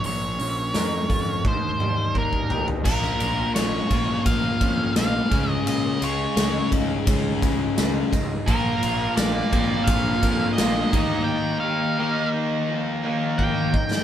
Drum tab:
CC |----------------|x---------------|----------------|----------------|
RD |----------------|--x-x-x-x-x-x-x-|x-x-x-x-x-x-x-x-|x-x-x-x-x-x-x-x-|
HH |o-o-o-o---------|----------------|----------------|----------------|
SD |----o-----------|-o--o-------o---|----o-------o---|----o-------o---|
T1 |--------o-------|----------------|----------------|----------------|
T2 |----------o-----|----------------|----------------|----------------|
FT |--------------oo|----------------|----------------|----------------|
BD |------o-o---oo--|o-----o-o-o---o-|------o-o-o---o-|o-----o-o-o---o-|

CC |----------------|
RD |----------------|
HH |----------------|
SD |---------------o|
T1 |----------------|
T2 |----------------|
FT |----------------|
BD |------------o-o-|